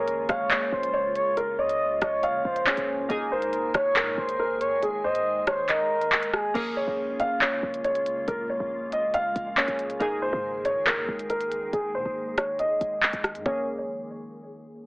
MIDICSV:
0, 0, Header, 1, 7, 480
1, 0, Start_track
1, 0, Key_signature, -5, "minor"
1, 0, Tempo, 431655
1, 1526, Time_signature, 4, 2, 24, 8
1, 16528, End_track
2, 0, Start_track
2, 0, Title_t, "Grand piano"
2, 0, Program_c, 0, 0
2, 0, Note_on_c, 0, 73, 90
2, 296, Note_off_c, 0, 73, 0
2, 326, Note_on_c, 0, 77, 85
2, 531, Note_off_c, 0, 77, 0
2, 564, Note_on_c, 0, 73, 89
2, 1015, Note_off_c, 0, 73, 0
2, 1040, Note_on_c, 0, 73, 89
2, 1494, Note_off_c, 0, 73, 0
2, 1525, Note_on_c, 0, 70, 90
2, 1731, Note_off_c, 0, 70, 0
2, 1765, Note_on_c, 0, 73, 80
2, 2216, Note_off_c, 0, 73, 0
2, 2245, Note_on_c, 0, 75, 78
2, 2451, Note_off_c, 0, 75, 0
2, 2484, Note_on_c, 0, 77, 87
2, 2936, Note_off_c, 0, 77, 0
2, 2966, Note_on_c, 0, 73, 82
2, 3417, Note_off_c, 0, 73, 0
2, 3447, Note_on_c, 0, 68, 93
2, 3652, Note_off_c, 0, 68, 0
2, 3688, Note_on_c, 0, 72, 87
2, 4138, Note_off_c, 0, 72, 0
2, 4168, Note_on_c, 0, 73, 93
2, 4373, Note_off_c, 0, 73, 0
2, 4408, Note_on_c, 0, 70, 88
2, 4858, Note_off_c, 0, 70, 0
2, 4886, Note_on_c, 0, 70, 90
2, 5337, Note_off_c, 0, 70, 0
2, 5366, Note_on_c, 0, 68, 85
2, 5571, Note_off_c, 0, 68, 0
2, 5607, Note_on_c, 0, 72, 82
2, 6057, Note_off_c, 0, 72, 0
2, 6085, Note_on_c, 0, 73, 86
2, 6291, Note_off_c, 0, 73, 0
2, 6326, Note_on_c, 0, 75, 85
2, 7241, Note_off_c, 0, 75, 0
2, 7284, Note_on_c, 0, 70, 90
2, 7490, Note_off_c, 0, 70, 0
2, 7524, Note_on_c, 0, 73, 86
2, 7976, Note_off_c, 0, 73, 0
2, 8005, Note_on_c, 0, 77, 87
2, 8211, Note_off_c, 0, 77, 0
2, 8245, Note_on_c, 0, 73, 85
2, 8696, Note_off_c, 0, 73, 0
2, 8723, Note_on_c, 0, 73, 86
2, 9175, Note_off_c, 0, 73, 0
2, 9207, Note_on_c, 0, 70, 84
2, 9412, Note_off_c, 0, 70, 0
2, 9446, Note_on_c, 0, 73, 77
2, 9897, Note_off_c, 0, 73, 0
2, 9925, Note_on_c, 0, 75, 80
2, 10131, Note_off_c, 0, 75, 0
2, 10166, Note_on_c, 0, 77, 88
2, 10617, Note_off_c, 0, 77, 0
2, 10647, Note_on_c, 0, 73, 82
2, 11097, Note_off_c, 0, 73, 0
2, 11126, Note_on_c, 0, 68, 89
2, 11331, Note_off_c, 0, 68, 0
2, 11366, Note_on_c, 0, 72, 87
2, 11817, Note_off_c, 0, 72, 0
2, 11844, Note_on_c, 0, 73, 92
2, 12050, Note_off_c, 0, 73, 0
2, 12083, Note_on_c, 0, 70, 88
2, 12535, Note_off_c, 0, 70, 0
2, 12564, Note_on_c, 0, 70, 88
2, 13016, Note_off_c, 0, 70, 0
2, 13043, Note_on_c, 0, 68, 82
2, 13250, Note_off_c, 0, 68, 0
2, 13285, Note_on_c, 0, 72, 77
2, 13736, Note_off_c, 0, 72, 0
2, 13763, Note_on_c, 0, 73, 85
2, 13970, Note_off_c, 0, 73, 0
2, 14003, Note_on_c, 0, 75, 86
2, 14920, Note_off_c, 0, 75, 0
2, 14964, Note_on_c, 0, 73, 88
2, 15188, Note_off_c, 0, 73, 0
2, 16528, End_track
3, 0, Start_track
3, 0, Title_t, "Soft synth lead"
3, 0, Program_c, 1, 80
3, 0, Note_on_c, 1, 70, 85
3, 295, Note_off_c, 1, 70, 0
3, 324, Note_on_c, 1, 73, 89
3, 776, Note_off_c, 1, 73, 0
3, 805, Note_on_c, 1, 72, 85
3, 1256, Note_off_c, 1, 72, 0
3, 1285, Note_on_c, 1, 73, 88
3, 1513, Note_off_c, 1, 73, 0
3, 1764, Note_on_c, 1, 75, 84
3, 2216, Note_off_c, 1, 75, 0
3, 2244, Note_on_c, 1, 73, 84
3, 2696, Note_off_c, 1, 73, 0
3, 2725, Note_on_c, 1, 72, 90
3, 3402, Note_off_c, 1, 72, 0
3, 3686, Note_on_c, 1, 70, 80
3, 4137, Note_off_c, 1, 70, 0
3, 4165, Note_on_c, 1, 73, 96
3, 4616, Note_off_c, 1, 73, 0
3, 4645, Note_on_c, 1, 72, 84
3, 5096, Note_off_c, 1, 72, 0
3, 5125, Note_on_c, 1, 73, 83
3, 5353, Note_off_c, 1, 73, 0
3, 5607, Note_on_c, 1, 75, 82
3, 6058, Note_off_c, 1, 75, 0
3, 6087, Note_on_c, 1, 72, 87
3, 6314, Note_off_c, 1, 72, 0
3, 6324, Note_on_c, 1, 70, 99
3, 7001, Note_off_c, 1, 70, 0
3, 7045, Note_on_c, 1, 68, 86
3, 7273, Note_off_c, 1, 68, 0
3, 16528, End_track
4, 0, Start_track
4, 0, Title_t, "Synth keys"
4, 0, Program_c, 2, 88
4, 0, Control_c, 2, 64, 127
4, 0, Note_on_c, 2, 58, 73
4, 0, Note_on_c, 2, 61, 64
4, 0, Note_on_c, 2, 68, 74
4, 2914, Note_off_c, 2, 58, 0
4, 2921, Note_off_c, 2, 61, 0
4, 2927, Note_off_c, 2, 68, 0
4, 2959, Note_on_c, 2, 58, 55
4, 2965, Note_on_c, 2, 61, 52
4, 2971, Note_on_c, 2, 68, 57
4, 3421, Note_off_c, 2, 58, 0
4, 3434, Note_on_c, 2, 58, 71
4, 3445, Note_off_c, 2, 61, 0
4, 3447, Note_on_c, 2, 63, 64
4, 3448, Note_off_c, 2, 68, 0
4, 3459, Note_on_c, 2, 68, 78
4, 3461, Control_c, 2, 64, 0
4, 3638, Control_c, 2, 64, 127
4, 7235, Note_off_c, 2, 58, 0
4, 7242, Note_off_c, 2, 63, 0
4, 7248, Note_off_c, 2, 68, 0
4, 7274, Note_on_c, 2, 58, 72
4, 7287, Note_on_c, 2, 61, 64
4, 7298, Control_c, 2, 64, 0
4, 7299, Note_on_c, 2, 68, 74
4, 7501, Control_c, 2, 64, 127
4, 10595, Note_off_c, 2, 58, 0
4, 10601, Note_off_c, 2, 61, 0
4, 10608, Note_off_c, 2, 68, 0
4, 10639, Note_on_c, 2, 58, 54
4, 10646, Note_on_c, 2, 61, 49
4, 10652, Note_on_c, 2, 68, 55
4, 11102, Note_off_c, 2, 58, 0
4, 11116, Note_on_c, 2, 58, 70
4, 11126, Note_off_c, 2, 61, 0
4, 11128, Note_on_c, 2, 63, 64
4, 11129, Note_off_c, 2, 68, 0
4, 11140, Note_on_c, 2, 68, 77
4, 11142, Control_c, 2, 64, 0
4, 11352, Control_c, 2, 64, 127
4, 14916, Note_off_c, 2, 58, 0
4, 14922, Note_off_c, 2, 63, 0
4, 14928, Note_off_c, 2, 68, 0
4, 14964, Note_on_c, 2, 58, 87
4, 14964, Note_on_c, 2, 61, 77
4, 14964, Note_on_c, 2, 68, 94
4, 14982, Control_c, 2, 64, 0
4, 15188, Note_off_c, 2, 58, 0
4, 15188, Note_off_c, 2, 61, 0
4, 15188, Note_off_c, 2, 68, 0
4, 16528, End_track
5, 0, Start_track
5, 0, Title_t, "Ambient pad"
5, 0, Program_c, 3, 92
5, 0, Note_on_c, 3, 49, 85
5, 0, Note_on_c, 3, 56, 76
5, 0, Note_on_c, 3, 58, 78
5, 0, Note_on_c, 3, 65, 93
5, 3401, Note_off_c, 3, 56, 0
5, 3406, Note_off_c, 3, 49, 0
5, 3407, Note_off_c, 3, 65, 0
5, 3446, Note_on_c, 3, 56, 77
5, 3446, Note_on_c, 3, 68, 94
5, 3447, Note_on_c, 3, 51, 84
5, 7240, Note_off_c, 3, 58, 0
5, 7247, Note_off_c, 3, 56, 0
5, 7247, Note_off_c, 3, 68, 0
5, 7248, Note_off_c, 3, 51, 0
5, 7285, Note_on_c, 3, 49, 86
5, 7285, Note_on_c, 3, 56, 75
5, 7285, Note_on_c, 3, 58, 76
5, 7285, Note_on_c, 3, 65, 92
5, 11087, Note_off_c, 3, 49, 0
5, 11087, Note_off_c, 3, 65, 0
5, 11126, Note_on_c, 3, 68, 92
5, 11127, Note_on_c, 3, 51, 84
5, 14921, Note_off_c, 3, 56, 0
5, 14921, Note_off_c, 3, 58, 0
5, 14927, Note_off_c, 3, 68, 0
5, 14928, Note_off_c, 3, 51, 0
5, 16528, End_track
6, 0, Start_track
6, 0, Title_t, "808-style bass"
6, 0, Program_c, 4, 38
6, 0, Note_on_c, 4, 34, 110
6, 296, Note_off_c, 4, 34, 0
6, 324, Note_on_c, 4, 34, 107
6, 785, Note_off_c, 4, 34, 0
6, 804, Note_on_c, 4, 34, 105
6, 1885, Note_on_c, 4, 37, 97
6, 1901, Note_off_c, 4, 34, 0
6, 2227, Note_off_c, 4, 37, 0
6, 2243, Note_on_c, 4, 34, 106
6, 2705, Note_off_c, 4, 34, 0
6, 2724, Note_on_c, 4, 34, 107
6, 3070, Note_off_c, 4, 34, 0
6, 3084, Note_on_c, 4, 34, 104
6, 3325, Note_on_c, 4, 37, 102
6, 3342, Note_off_c, 4, 34, 0
6, 3439, Note_off_c, 4, 37, 0
6, 3445, Note_on_c, 4, 32, 108
6, 3805, Note_on_c, 4, 34, 100
6, 3822, Note_off_c, 4, 32, 0
6, 3919, Note_off_c, 4, 34, 0
6, 4166, Note_on_c, 4, 32, 105
6, 4405, Note_on_c, 4, 44, 106
6, 4422, Note_off_c, 4, 32, 0
6, 4633, Note_off_c, 4, 44, 0
6, 4645, Note_on_c, 4, 32, 109
6, 5365, Note_off_c, 4, 32, 0
6, 7285, Note_on_c, 4, 34, 112
6, 7631, Note_off_c, 4, 34, 0
6, 7645, Note_on_c, 4, 34, 97
6, 8451, Note_off_c, 4, 34, 0
6, 8484, Note_on_c, 4, 34, 106
6, 8964, Note_on_c, 4, 37, 101
6, 8981, Note_off_c, 4, 34, 0
6, 9193, Note_off_c, 4, 37, 0
6, 9205, Note_on_c, 4, 34, 107
6, 9551, Note_off_c, 4, 34, 0
6, 9564, Note_on_c, 4, 34, 104
6, 10164, Note_on_c, 4, 32, 104
6, 10181, Note_off_c, 4, 34, 0
6, 10284, Note_on_c, 4, 34, 102
6, 10301, Note_off_c, 4, 32, 0
6, 10398, Note_off_c, 4, 34, 0
6, 10405, Note_on_c, 4, 34, 102
6, 10750, Note_off_c, 4, 34, 0
6, 10765, Note_on_c, 4, 34, 103
6, 11005, Note_on_c, 4, 37, 101
6, 11021, Note_off_c, 4, 34, 0
6, 11119, Note_off_c, 4, 37, 0
6, 11125, Note_on_c, 4, 32, 110
6, 11365, Note_on_c, 4, 34, 102
6, 11382, Note_off_c, 4, 32, 0
6, 11479, Note_off_c, 4, 34, 0
6, 11485, Note_on_c, 4, 44, 110
6, 11965, Note_on_c, 4, 34, 94
6, 11982, Note_off_c, 4, 44, 0
6, 12146, Note_on_c, 4, 44, 103
6, 12163, Note_off_c, 4, 34, 0
6, 12317, Note_off_c, 4, 44, 0
6, 12325, Note_on_c, 4, 32, 105
6, 12805, Note_on_c, 4, 39, 101
6, 12822, Note_off_c, 4, 32, 0
6, 12925, Note_on_c, 4, 32, 99
6, 12941, Note_off_c, 4, 39, 0
6, 13039, Note_off_c, 4, 32, 0
6, 13045, Note_on_c, 4, 32, 109
6, 13285, Note_on_c, 4, 48, 98
6, 13302, Note_off_c, 4, 32, 0
6, 13399, Note_off_c, 4, 48, 0
6, 13406, Note_on_c, 4, 32, 107
6, 14006, Note_on_c, 4, 30, 101
6, 14023, Note_off_c, 4, 32, 0
6, 14126, Note_on_c, 4, 32, 103
6, 14142, Note_off_c, 4, 30, 0
6, 14239, Note_off_c, 4, 32, 0
6, 14245, Note_on_c, 4, 32, 108
6, 14485, Note_on_c, 4, 30, 104
6, 14502, Note_off_c, 4, 32, 0
6, 14599, Note_off_c, 4, 30, 0
6, 14604, Note_on_c, 4, 32, 106
6, 14844, Note_on_c, 4, 44, 99
6, 14861, Note_off_c, 4, 32, 0
6, 14959, Note_off_c, 4, 44, 0
6, 14965, Note_on_c, 4, 34, 112
6, 15411, Note_off_c, 4, 34, 0
6, 16528, End_track
7, 0, Start_track
7, 0, Title_t, "Drums"
7, 85, Note_on_c, 9, 42, 82
7, 196, Note_off_c, 9, 42, 0
7, 322, Note_on_c, 9, 42, 80
7, 325, Note_on_c, 9, 37, 95
7, 433, Note_off_c, 9, 42, 0
7, 436, Note_off_c, 9, 37, 0
7, 562, Note_on_c, 9, 42, 78
7, 565, Note_on_c, 9, 39, 120
7, 673, Note_off_c, 9, 42, 0
7, 676, Note_off_c, 9, 39, 0
7, 927, Note_on_c, 9, 42, 76
7, 1038, Note_off_c, 9, 42, 0
7, 1284, Note_on_c, 9, 42, 92
7, 1396, Note_off_c, 9, 42, 0
7, 1525, Note_on_c, 9, 42, 75
7, 1636, Note_off_c, 9, 42, 0
7, 1884, Note_on_c, 9, 42, 87
7, 1995, Note_off_c, 9, 42, 0
7, 2241, Note_on_c, 9, 42, 86
7, 2244, Note_on_c, 9, 37, 94
7, 2353, Note_off_c, 9, 42, 0
7, 2355, Note_off_c, 9, 37, 0
7, 2481, Note_on_c, 9, 42, 77
7, 2592, Note_off_c, 9, 42, 0
7, 2847, Note_on_c, 9, 42, 72
7, 2958, Note_off_c, 9, 42, 0
7, 2965, Note_on_c, 9, 39, 117
7, 3077, Note_off_c, 9, 39, 0
7, 3083, Note_on_c, 9, 42, 78
7, 3194, Note_off_c, 9, 42, 0
7, 3446, Note_on_c, 9, 42, 74
7, 3557, Note_off_c, 9, 42, 0
7, 3805, Note_on_c, 9, 42, 86
7, 3916, Note_off_c, 9, 42, 0
7, 3925, Note_on_c, 9, 42, 83
7, 4036, Note_off_c, 9, 42, 0
7, 4162, Note_on_c, 9, 42, 81
7, 4165, Note_on_c, 9, 37, 96
7, 4273, Note_off_c, 9, 42, 0
7, 4276, Note_off_c, 9, 37, 0
7, 4402, Note_on_c, 9, 42, 78
7, 4405, Note_on_c, 9, 39, 112
7, 4513, Note_off_c, 9, 42, 0
7, 4516, Note_off_c, 9, 39, 0
7, 4767, Note_on_c, 9, 42, 76
7, 4879, Note_off_c, 9, 42, 0
7, 5126, Note_on_c, 9, 42, 96
7, 5237, Note_off_c, 9, 42, 0
7, 5366, Note_on_c, 9, 42, 76
7, 5477, Note_off_c, 9, 42, 0
7, 5726, Note_on_c, 9, 42, 84
7, 5837, Note_off_c, 9, 42, 0
7, 6083, Note_on_c, 9, 42, 86
7, 6086, Note_on_c, 9, 37, 97
7, 6195, Note_off_c, 9, 42, 0
7, 6197, Note_off_c, 9, 37, 0
7, 6323, Note_on_c, 9, 42, 79
7, 6326, Note_on_c, 9, 39, 66
7, 6434, Note_off_c, 9, 42, 0
7, 6437, Note_off_c, 9, 39, 0
7, 6688, Note_on_c, 9, 42, 72
7, 6799, Note_off_c, 9, 42, 0
7, 6807, Note_on_c, 9, 39, 114
7, 6918, Note_off_c, 9, 39, 0
7, 6924, Note_on_c, 9, 42, 78
7, 7035, Note_off_c, 9, 42, 0
7, 7045, Note_on_c, 9, 37, 103
7, 7156, Note_off_c, 9, 37, 0
7, 7285, Note_on_c, 9, 49, 97
7, 7286, Note_on_c, 9, 42, 74
7, 7397, Note_off_c, 9, 42, 0
7, 7397, Note_off_c, 9, 49, 0
7, 8002, Note_on_c, 9, 42, 86
7, 8114, Note_off_c, 9, 42, 0
7, 8245, Note_on_c, 9, 39, 115
7, 8356, Note_off_c, 9, 39, 0
7, 8607, Note_on_c, 9, 42, 75
7, 8718, Note_off_c, 9, 42, 0
7, 8723, Note_on_c, 9, 42, 87
7, 8834, Note_off_c, 9, 42, 0
7, 8843, Note_on_c, 9, 42, 71
7, 8954, Note_off_c, 9, 42, 0
7, 8965, Note_on_c, 9, 42, 95
7, 9076, Note_off_c, 9, 42, 0
7, 9205, Note_on_c, 9, 42, 73
7, 9316, Note_off_c, 9, 42, 0
7, 9922, Note_on_c, 9, 42, 85
7, 10033, Note_off_c, 9, 42, 0
7, 10162, Note_on_c, 9, 42, 76
7, 10273, Note_off_c, 9, 42, 0
7, 10406, Note_on_c, 9, 42, 78
7, 10517, Note_off_c, 9, 42, 0
7, 10646, Note_on_c, 9, 39, 117
7, 10757, Note_off_c, 9, 39, 0
7, 10764, Note_on_c, 9, 42, 77
7, 10875, Note_off_c, 9, 42, 0
7, 10886, Note_on_c, 9, 42, 92
7, 10998, Note_off_c, 9, 42, 0
7, 11007, Note_on_c, 9, 42, 71
7, 11118, Note_off_c, 9, 42, 0
7, 11126, Note_on_c, 9, 42, 75
7, 11237, Note_off_c, 9, 42, 0
7, 11843, Note_on_c, 9, 42, 88
7, 11954, Note_off_c, 9, 42, 0
7, 12085, Note_on_c, 9, 39, 118
7, 12196, Note_off_c, 9, 39, 0
7, 12447, Note_on_c, 9, 42, 77
7, 12558, Note_off_c, 9, 42, 0
7, 12563, Note_on_c, 9, 42, 88
7, 12675, Note_off_c, 9, 42, 0
7, 12683, Note_on_c, 9, 42, 69
7, 12795, Note_off_c, 9, 42, 0
7, 12806, Note_on_c, 9, 42, 94
7, 12917, Note_off_c, 9, 42, 0
7, 13046, Note_on_c, 9, 42, 75
7, 13158, Note_off_c, 9, 42, 0
7, 13763, Note_on_c, 9, 42, 86
7, 13765, Note_on_c, 9, 37, 96
7, 13874, Note_off_c, 9, 42, 0
7, 13876, Note_off_c, 9, 37, 0
7, 14002, Note_on_c, 9, 42, 75
7, 14113, Note_off_c, 9, 42, 0
7, 14245, Note_on_c, 9, 42, 76
7, 14357, Note_off_c, 9, 42, 0
7, 14485, Note_on_c, 9, 39, 115
7, 14597, Note_off_c, 9, 39, 0
7, 14603, Note_on_c, 9, 42, 76
7, 14714, Note_off_c, 9, 42, 0
7, 14724, Note_on_c, 9, 37, 105
7, 14725, Note_on_c, 9, 42, 92
7, 14835, Note_off_c, 9, 37, 0
7, 14837, Note_off_c, 9, 42, 0
7, 14846, Note_on_c, 9, 42, 73
7, 14957, Note_off_c, 9, 42, 0
7, 14965, Note_on_c, 9, 36, 105
7, 15076, Note_off_c, 9, 36, 0
7, 16528, End_track
0, 0, End_of_file